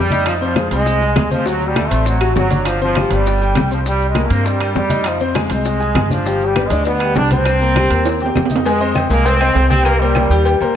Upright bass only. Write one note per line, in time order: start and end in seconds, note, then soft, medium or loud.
0.00 0.66 F2 medium
0.71 1.13 C2 medium
1.16 1.86 D2 medium
1.91 2.33 A1 medium
2.36 3.05 G1 medium
3.10 3.52 G1 medium
3.56 4.25 C2 medium
4.31 4.73 G2 medium
4.75 5.45 F2 medium
5.50 5.92 C2 medium
5.95 6.65 G1 medium
6.70 7.12 D2 loud
7.15 7.85 C2 medium
7.90 8.32 D#2 medium
8.36 9.05 F2 medium
9.10 9.52 C2 medium
9.55 10.25 C2 medium
10.30 10.58 D#2 medium
10.61 10.74 D#2 medium